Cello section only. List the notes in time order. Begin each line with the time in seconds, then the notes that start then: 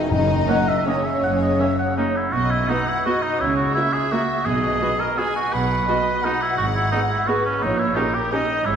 0.11 F#2
1.24 F#2
2.34 B2
3.40 C#3
4.46 B2
5.53 B2
6.58 G#2
7.62 A#2
8.65 G#2